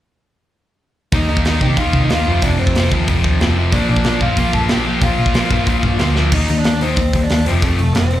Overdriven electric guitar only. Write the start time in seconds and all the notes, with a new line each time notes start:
1.14 D#3 A#3 D#4
1.46 D#3 A#3 D#4
1.63 D#3 A#3 D#4
1.79 D#3 A#3 D#4
2.12 D#3 A#3 D#4
2.26 F2 C3 F3
2.43 F2 C3 F3
2.76 F2 C3 F3
2.93 F2 C3 F3
3.09 F2 C3 F3
3.41 F2 C3 F3
3.57 F2 C3 F3
3.73 A#2 F3 A#3
4.06 A#2 F3 A#3
4.22 A#2 F3 A#3
4.38 A#2 F3 A#3
4.70 A#2 F3 A#3
4.86 A#2 F3 A#3
5.02 A#2 F3 A#3
5.34 A#2 F3 A#3
5.51 A#2 F3 A#3
5.67 A#2 F3 A#3
6.00 A#2 F3 A#3
6.16 A#2 F3 A#3
6.32 D#3 A#3 D#4
6.49 D#3 A#3
6.65 D#3 A#3
6.82 D#3 A#3 D#4
6.98 D#3 A#3
7.15 D#3 A#3
7.32 D#3 A#3
7.47 F2 C3 F3
7.63 F2 C3 F3
7.80 F2 C3
7.96 F2 C3
8.13 F2 C3